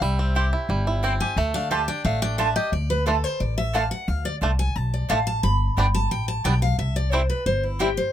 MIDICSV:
0, 0, Header, 1, 5, 480
1, 0, Start_track
1, 0, Tempo, 338409
1, 30, Time_signature, 4, 2, 24, 8
1, 11523, End_track
2, 0, Start_track
2, 0, Title_t, "Steel-string acoustic guitar"
2, 0, Program_c, 0, 25
2, 31, Note_on_c, 0, 76, 89
2, 754, Note_off_c, 0, 76, 0
2, 1708, Note_on_c, 0, 80, 108
2, 1946, Note_off_c, 0, 80, 0
2, 1946, Note_on_c, 0, 81, 110
2, 2181, Note_off_c, 0, 81, 0
2, 2186, Note_on_c, 0, 77, 116
2, 2418, Note_off_c, 0, 77, 0
2, 2423, Note_on_c, 0, 76, 92
2, 2660, Note_off_c, 0, 76, 0
2, 2665, Note_on_c, 0, 79, 120
2, 2896, Note_off_c, 0, 79, 0
2, 2902, Note_on_c, 0, 77, 100
2, 3141, Note_off_c, 0, 77, 0
2, 3150, Note_on_c, 0, 79, 127
2, 3373, Note_off_c, 0, 79, 0
2, 3378, Note_on_c, 0, 76, 93
2, 3620, Note_off_c, 0, 76, 0
2, 3627, Note_on_c, 0, 75, 113
2, 3858, Note_off_c, 0, 75, 0
2, 3868, Note_on_c, 0, 74, 86
2, 4105, Note_off_c, 0, 74, 0
2, 4114, Note_on_c, 0, 71, 107
2, 4341, Note_off_c, 0, 71, 0
2, 4346, Note_on_c, 0, 69, 81
2, 4593, Note_off_c, 0, 69, 0
2, 4593, Note_on_c, 0, 72, 98
2, 4821, Note_off_c, 0, 72, 0
2, 4826, Note_on_c, 0, 74, 80
2, 5064, Note_off_c, 0, 74, 0
2, 5072, Note_on_c, 0, 76, 113
2, 5310, Note_off_c, 0, 76, 0
2, 5310, Note_on_c, 0, 77, 103
2, 5540, Note_off_c, 0, 77, 0
2, 5546, Note_on_c, 0, 78, 101
2, 5783, Note_off_c, 0, 78, 0
2, 5783, Note_on_c, 0, 77, 100
2, 6022, Note_off_c, 0, 77, 0
2, 6030, Note_on_c, 0, 74, 107
2, 6172, Note_off_c, 0, 74, 0
2, 6511, Note_on_c, 0, 80, 112
2, 6747, Note_off_c, 0, 80, 0
2, 6747, Note_on_c, 0, 81, 117
2, 6984, Note_off_c, 0, 81, 0
2, 7001, Note_on_c, 0, 74, 67
2, 7223, Note_off_c, 0, 74, 0
2, 7228, Note_on_c, 0, 77, 104
2, 7465, Note_off_c, 0, 77, 0
2, 7472, Note_on_c, 0, 81, 104
2, 7700, Note_off_c, 0, 81, 0
2, 7706, Note_on_c, 0, 83, 110
2, 8381, Note_off_c, 0, 83, 0
2, 8432, Note_on_c, 0, 81, 115
2, 8661, Note_off_c, 0, 81, 0
2, 8669, Note_on_c, 0, 79, 103
2, 8902, Note_off_c, 0, 79, 0
2, 8908, Note_on_c, 0, 81, 109
2, 9139, Note_off_c, 0, 81, 0
2, 9148, Note_on_c, 0, 79, 114
2, 9385, Note_off_c, 0, 79, 0
2, 9391, Note_on_c, 0, 77, 105
2, 9621, Note_off_c, 0, 77, 0
2, 9626, Note_on_c, 0, 76, 89
2, 9864, Note_off_c, 0, 76, 0
2, 9872, Note_on_c, 0, 74, 100
2, 10101, Note_off_c, 0, 74, 0
2, 10101, Note_on_c, 0, 72, 94
2, 10341, Note_off_c, 0, 72, 0
2, 10347, Note_on_c, 0, 71, 97
2, 10578, Note_off_c, 0, 71, 0
2, 10584, Note_on_c, 0, 72, 108
2, 10823, Note_off_c, 0, 72, 0
2, 10829, Note_on_c, 0, 64, 49
2, 11059, Note_off_c, 0, 64, 0
2, 11065, Note_on_c, 0, 67, 96
2, 11303, Note_off_c, 0, 67, 0
2, 11309, Note_on_c, 0, 72, 101
2, 11523, Note_off_c, 0, 72, 0
2, 11523, End_track
3, 0, Start_track
3, 0, Title_t, "Mandolin"
3, 0, Program_c, 1, 25
3, 496, Note_on_c, 1, 60, 80
3, 504, Note_on_c, 1, 64, 86
3, 510, Note_on_c, 1, 72, 97
3, 516, Note_on_c, 1, 79, 100
3, 633, Note_off_c, 1, 60, 0
3, 637, Note_off_c, 1, 64, 0
3, 640, Note_off_c, 1, 72, 0
3, 643, Note_off_c, 1, 79, 0
3, 1456, Note_on_c, 1, 60, 96
3, 1466, Note_on_c, 1, 64, 108
3, 1472, Note_on_c, 1, 72, 113
3, 1477, Note_on_c, 1, 79, 108
3, 1593, Note_off_c, 1, 60, 0
3, 1597, Note_off_c, 1, 64, 0
3, 1600, Note_off_c, 1, 72, 0
3, 1603, Note_off_c, 1, 79, 0
3, 2417, Note_on_c, 1, 57, 83
3, 2424, Note_on_c, 1, 65, 107
3, 2430, Note_on_c, 1, 74, 98
3, 2436, Note_on_c, 1, 81, 106
3, 2553, Note_off_c, 1, 57, 0
3, 2557, Note_off_c, 1, 65, 0
3, 2559, Note_off_c, 1, 74, 0
3, 2562, Note_off_c, 1, 81, 0
3, 3377, Note_on_c, 1, 57, 107
3, 3383, Note_on_c, 1, 65, 115
3, 3390, Note_on_c, 1, 74, 119
3, 3396, Note_on_c, 1, 81, 123
3, 3513, Note_off_c, 1, 57, 0
3, 3516, Note_off_c, 1, 65, 0
3, 3519, Note_off_c, 1, 74, 0
3, 3522, Note_off_c, 1, 81, 0
3, 4338, Note_on_c, 1, 57, 87
3, 4346, Note_on_c, 1, 65, 90
3, 4351, Note_on_c, 1, 74, 92
3, 4357, Note_on_c, 1, 81, 107
3, 4473, Note_off_c, 1, 57, 0
3, 4477, Note_off_c, 1, 65, 0
3, 4480, Note_off_c, 1, 74, 0
3, 4483, Note_off_c, 1, 81, 0
3, 5297, Note_on_c, 1, 57, 103
3, 5307, Note_on_c, 1, 65, 102
3, 5310, Note_on_c, 1, 74, 92
3, 5317, Note_on_c, 1, 81, 114
3, 5433, Note_off_c, 1, 57, 0
3, 5438, Note_off_c, 1, 65, 0
3, 5440, Note_off_c, 1, 74, 0
3, 5443, Note_off_c, 1, 81, 0
3, 6256, Note_on_c, 1, 57, 83
3, 6263, Note_on_c, 1, 65, 92
3, 6269, Note_on_c, 1, 74, 88
3, 6276, Note_on_c, 1, 81, 91
3, 6393, Note_off_c, 1, 57, 0
3, 6396, Note_off_c, 1, 65, 0
3, 6399, Note_off_c, 1, 74, 0
3, 6403, Note_off_c, 1, 81, 0
3, 7215, Note_on_c, 1, 57, 101
3, 7225, Note_on_c, 1, 65, 115
3, 7231, Note_on_c, 1, 74, 117
3, 7238, Note_on_c, 1, 81, 115
3, 7352, Note_off_c, 1, 57, 0
3, 7357, Note_off_c, 1, 65, 0
3, 7360, Note_off_c, 1, 74, 0
3, 7363, Note_off_c, 1, 81, 0
3, 8180, Note_on_c, 1, 59, 82
3, 8187, Note_on_c, 1, 67, 89
3, 8193, Note_on_c, 1, 74, 101
3, 8200, Note_on_c, 1, 79, 113
3, 8315, Note_off_c, 1, 59, 0
3, 8318, Note_off_c, 1, 67, 0
3, 8321, Note_off_c, 1, 74, 0
3, 8325, Note_off_c, 1, 79, 0
3, 9139, Note_on_c, 1, 59, 105
3, 9148, Note_on_c, 1, 67, 113
3, 9152, Note_on_c, 1, 74, 112
3, 9157, Note_on_c, 1, 79, 106
3, 9274, Note_off_c, 1, 59, 0
3, 9279, Note_off_c, 1, 67, 0
3, 9281, Note_off_c, 1, 74, 0
3, 9283, Note_off_c, 1, 79, 0
3, 10095, Note_on_c, 1, 60, 85
3, 10102, Note_on_c, 1, 64, 87
3, 10108, Note_on_c, 1, 72, 110
3, 10112, Note_on_c, 1, 79, 95
3, 10232, Note_off_c, 1, 60, 0
3, 10235, Note_off_c, 1, 64, 0
3, 10239, Note_off_c, 1, 72, 0
3, 10240, Note_off_c, 1, 79, 0
3, 11053, Note_on_c, 1, 60, 95
3, 11059, Note_on_c, 1, 64, 105
3, 11065, Note_on_c, 1, 72, 97
3, 11070, Note_on_c, 1, 79, 110
3, 11191, Note_off_c, 1, 60, 0
3, 11194, Note_off_c, 1, 64, 0
3, 11197, Note_off_c, 1, 72, 0
3, 11200, Note_off_c, 1, 79, 0
3, 11523, End_track
4, 0, Start_track
4, 0, Title_t, "Five-string banjo"
4, 0, Program_c, 2, 105
4, 26, Note_on_c, 2, 55, 81
4, 272, Note_on_c, 2, 60, 63
4, 513, Note_on_c, 2, 67, 66
4, 703, Note_off_c, 2, 55, 0
4, 750, Note_on_c, 2, 64, 63
4, 941, Note_off_c, 2, 60, 0
4, 988, Note_on_c, 2, 55, 67
4, 1186, Note_off_c, 2, 67, 0
4, 1219, Note_off_c, 2, 64, 0
4, 1236, Note_on_c, 2, 64, 64
4, 1472, Note_on_c, 2, 60, 65
4, 1663, Note_off_c, 2, 55, 0
4, 1719, Note_on_c, 2, 67, 54
4, 1903, Note_off_c, 2, 64, 0
4, 1950, Note_off_c, 2, 60, 0
4, 1952, Note_off_c, 2, 67, 0
4, 1954, Note_on_c, 2, 57, 81
4, 2204, Note_on_c, 2, 62, 61
4, 2431, Note_on_c, 2, 67, 66
4, 2626, Note_off_c, 2, 57, 0
4, 2668, Note_off_c, 2, 62, 0
4, 2685, Note_on_c, 2, 62, 60
4, 2913, Note_on_c, 2, 57, 68
4, 3105, Note_off_c, 2, 67, 0
4, 3136, Note_off_c, 2, 62, 0
4, 3153, Note_on_c, 2, 62, 58
4, 3370, Note_off_c, 2, 62, 0
4, 3387, Note_on_c, 2, 62, 62
4, 3586, Note_off_c, 2, 57, 0
4, 3632, Note_on_c, 2, 67, 60
4, 3867, Note_off_c, 2, 62, 0
4, 3868, Note_off_c, 2, 67, 0
4, 4362, Note_on_c, 2, 57, 67
4, 4369, Note_on_c, 2, 62, 65
4, 4397, Note_off_c, 2, 62, 0
4, 4463, Note_off_c, 2, 57, 0
4, 5319, Note_on_c, 2, 57, 62
4, 5328, Note_on_c, 2, 62, 66
4, 5356, Note_off_c, 2, 62, 0
4, 5422, Note_off_c, 2, 57, 0
4, 6284, Note_on_c, 2, 57, 69
4, 6291, Note_on_c, 2, 62, 67
4, 6320, Note_off_c, 2, 62, 0
4, 6384, Note_off_c, 2, 57, 0
4, 7244, Note_on_c, 2, 57, 72
4, 7253, Note_on_c, 2, 62, 59
4, 7282, Note_off_c, 2, 62, 0
4, 7344, Note_off_c, 2, 57, 0
4, 8199, Note_on_c, 2, 55, 68
4, 8209, Note_on_c, 2, 59, 68
4, 8219, Note_on_c, 2, 62, 69
4, 8304, Note_off_c, 2, 55, 0
4, 8305, Note_off_c, 2, 59, 0
4, 8306, Note_off_c, 2, 62, 0
4, 9159, Note_on_c, 2, 55, 66
4, 9169, Note_on_c, 2, 59, 64
4, 9170, Note_on_c, 2, 62, 63
4, 9262, Note_off_c, 2, 55, 0
4, 9264, Note_off_c, 2, 59, 0
4, 9267, Note_off_c, 2, 62, 0
4, 10118, Note_on_c, 2, 55, 69
4, 10123, Note_on_c, 2, 60, 76
4, 10128, Note_on_c, 2, 64, 68
4, 10221, Note_off_c, 2, 55, 0
4, 10222, Note_off_c, 2, 60, 0
4, 10226, Note_off_c, 2, 64, 0
4, 11073, Note_on_c, 2, 55, 67
4, 11077, Note_on_c, 2, 60, 66
4, 11085, Note_on_c, 2, 64, 63
4, 11178, Note_off_c, 2, 55, 0
4, 11181, Note_off_c, 2, 60, 0
4, 11183, Note_off_c, 2, 64, 0
4, 11523, End_track
5, 0, Start_track
5, 0, Title_t, "Upright bass"
5, 0, Program_c, 3, 32
5, 19, Note_on_c, 3, 36, 90
5, 736, Note_off_c, 3, 36, 0
5, 976, Note_on_c, 3, 31, 92
5, 1694, Note_off_c, 3, 31, 0
5, 1934, Note_on_c, 3, 38, 95
5, 2653, Note_off_c, 3, 38, 0
5, 2901, Note_on_c, 3, 33, 88
5, 3617, Note_off_c, 3, 33, 0
5, 3861, Note_on_c, 3, 38, 86
5, 4577, Note_off_c, 3, 38, 0
5, 4825, Note_on_c, 3, 33, 85
5, 5540, Note_off_c, 3, 33, 0
5, 5786, Note_on_c, 3, 38, 97
5, 6144, Note_off_c, 3, 38, 0
5, 6263, Note_on_c, 3, 36, 79
5, 6674, Note_off_c, 3, 36, 0
5, 6749, Note_on_c, 3, 35, 83
5, 7157, Note_off_c, 3, 35, 0
5, 7229, Note_on_c, 3, 33, 81
5, 7637, Note_off_c, 3, 33, 0
5, 7706, Note_on_c, 3, 31, 94
5, 8064, Note_off_c, 3, 31, 0
5, 8189, Note_on_c, 3, 31, 89
5, 8597, Note_off_c, 3, 31, 0
5, 8669, Note_on_c, 3, 33, 78
5, 9077, Note_off_c, 3, 33, 0
5, 9146, Note_on_c, 3, 35, 88
5, 9555, Note_off_c, 3, 35, 0
5, 9622, Note_on_c, 3, 36, 89
5, 10338, Note_off_c, 3, 36, 0
5, 10580, Note_on_c, 3, 31, 78
5, 11296, Note_off_c, 3, 31, 0
5, 11523, End_track
0, 0, End_of_file